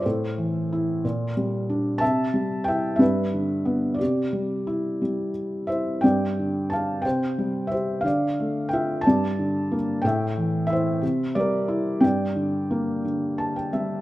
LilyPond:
<<
  \new Staff \with { instrumentName = "Felt piano" } { \time 6/8 \key g \dorian \tempo 4. = 60 << { <a' c''>2 r4 | <e'' a''>4 <e'' g''>8 <b' e''>4. | <g' d''>2 r8 <c'' e''>8 | <d'' g''>4 <f'' a''>8 <c'' g''>4 <c'' e''>8 |
<d'' f''>4 <e'' g''>8 <d'' a''>4 r8 | <e'' g''>4 <c'' e''>4 <bes' d''>4 | <d'' g''>2~ <d'' g''>8 r8 | } \\ { r2. | r2. | r2. | r2. |
r2. | r2. | r2 a''16 g''16 e''8 | } >> }
  \new Staff \with { instrumentName = "Felt piano" } { \clef bass \time 6/8 \key g \dorian a,8 e8 e'8 bes,8 g8 d'8 | c8 g8 e'8 g,8 d8 b8 | c8 g8 e'8 g4 e'8 | g,8 d8 d'8 c8 g8 g'8 |
d8 a8 f'8 g,8 d8 bes8 | a,8 e8 e'8 c8 g8 e'8 | g,8 d8 bes8 d4 g8 | }
>>